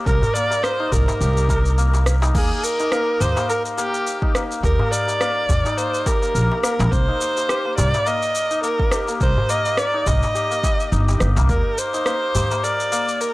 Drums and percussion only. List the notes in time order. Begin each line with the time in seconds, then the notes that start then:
0.06 kick, shaker
0.22 darbuka dum, shaker
0.35 shaker
0.51 darbuka ka, shaker
0.64 cross-stick, shaker
0.92 kick, darbuka dum, shaker
1.08 darbuka ka, darbuka tek, shaker
1.21 shaker
1.37 shaker
1.49 kick, darbuka tek, shaker
1.66 shaker
1.78 shaker
1.94 darbuka tek, shaker
2.06 cross-stick, shaker
2.22 darbuka tek, shaker
2.35 kick, crash, shaker
2.64 shaker
2.80 darbuka ka, shaker
2.92 cross-stick, shaker
3.21 darbuka dum, shaker
3.36 darbuka ka, darbuka tek, shaker
3.50 shaker
3.65 shaker
3.78 shaker
3.94 shaker
4.07 shaker
4.22 kick, darbuka ka
4.35 cross-stick, shaker
4.51 shaker
4.63 kick, shaker
4.79 darbuka dum
4.93 shaker
5.08 darbuka ka, shaker
5.21 cross-stick, shaker
5.49 kick, darbuka dum, shaker
5.66 darbuka ka, darbuka tek, shaker
5.78 shaker
5.94 shaker
6.06 kick, darbuka tek, shaker
6.23 shaker
6.36 shaker
6.52 darbuka tek
6.64 cross-stick, shaker
6.80 darbuka tek, shaker
6.92 kick, shaker
7.21 shaker
7.37 darbuka ka, shaker
7.49 cross-stick, shaker
7.78 darbuka dum, shaker
7.94 darbuka ka, darbuka tek, shaker
8.07 shaker
8.23 shaker
8.35 shaker
8.51 shaker
8.64 shaker
8.79 kick, darbuka ka
8.91 cross-stick, shaker
9.08 shaker
9.21 kick, shaker
9.38 darbuka dum
9.49 shaker
9.65 darbuka ka, shaker
9.77 cross-stick, shaker
10.06 kick, darbuka dum, shaker
10.23 darbuka ka, darbuka tek, shaker
10.35 shaker
10.52 shaker
10.64 kick, darbuka tek, shaker
10.80 shaker
10.93 shaker
11.09 darbuka tek, shaker
11.20 cross-stick, shaker
11.36 darbuka tek, shaker
11.49 kick, shaker
11.78 shaker
11.94 darbuka ka, shaker
12.06 cross-stick, shaker
12.35 darbuka dum, shaker
12.51 darbuka ka, darbuka tek, shaker
12.64 shaker
12.80 shaker
12.92 shaker
13.08 shaker
13.21 shaker